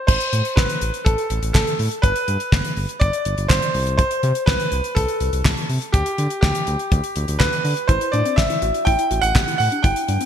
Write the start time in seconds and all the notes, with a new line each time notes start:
0.07 A1 C5, kick, crash
0.20 closed hi-hat
0.33 A2, closed hi-hat
0.45 closed hi-hat
0.56 A1 B4, kick, snare
0.69 closed hi-hat
0.81 A1, closed hi-hat
0.94 closed hi-hat
1.05 A1 A4, kick, closed hi-hat
1.18 closed hi-hat
1.30 A1, closed hi-hat
1.42 A1, closed hi-hat
1.53 A1 A4, kick, snare, clap
1.67 closed hi-hat
1.79 A2, open hi-hat
1.91 closed hi-hat
2.02 G1 B4, kick, closed hi-hat
2.16 closed hi-hat
2.28 G2, closed hi-hat
2.40 closed hi-hat
2.52 G1, kick, snare
2.65 closed hi-hat
2.77 G1, open hi-hat
2.89 closed hi-hat
3.00 G1 D5, kick, closed hi-hat
3.13 closed hi-hat
3.25 G1, closed hi-hat
3.38 G1, closed hi-hat
3.48 G1 C5, kick, snare, clap
3.62 closed hi-hat
3.74 C2, open hi-hat
3.87 closed hi-hat
3.97 C5, kick, closed hi-hat
4.11 closed hi-hat
4.23 C3, closed hi-hat
4.35 closed hi-hat
4.46 C2 B4, kick, snare
4.60 closed hi-hat
4.72 C2, closed hi-hat
4.84 closed hi-hat
4.95 C2 A4, kick, closed hi-hat
5.08 closed hi-hat
5.20 C2, closed hi-hat
5.33 C2, closed hi-hat
5.45 C2, kick, snare, clap
5.57 closed hi-hat
5.69 C3, open hi-hat
5.82 closed hi-hat
5.92 D2 G4, kick, closed hi-hat
6.06 closed hi-hat
6.18 D3, closed hi-hat
6.30 closed hi-hat
6.41 D2 G4, kick, snare
6.55 closed hi-hat
6.67 D2, closed hi-hat
6.79 closed hi-hat
6.92 D2, kick, closed hi-hat
7.04 closed hi-hat
7.16 D2, closed hi-hat
7.28 D2, closed hi-hat
7.39 D2 B4, kick, snare, clap
7.53 closed hi-hat
7.64 D3, open hi-hat
7.77 closed hi-hat
7.88 A1 E4 C5, kick, closed hi-hat
8.01 closed hi-hat
8.12 A2 D4 D5, closed hi-hat
8.25 C4, closed hi-hat
8.36 A1 E5, kick, snare
8.50 E4, closed hi-hat
8.62 A1 F#4, closed hi-hat
8.74 closed hi-hat
8.85 A1 E4 G5, kick, closed hi-hat
8.99 E4, closed hi-hat
9.11 A1 F#4, closed hi-hat
9.22 A1 F#5, closed hi-hat
9.35 A1 G4, kick, snare, clap
9.48 E4, closed hi-hat
9.58 A2 F#5, open hi-hat
9.72 D4, closed hi-hat
9.83 G1 E4 G5, kick, closed hi-hat
9.96 closed hi-hat
10.08 G2 D4, closed hi-hat
10.21 C4, closed hi-hat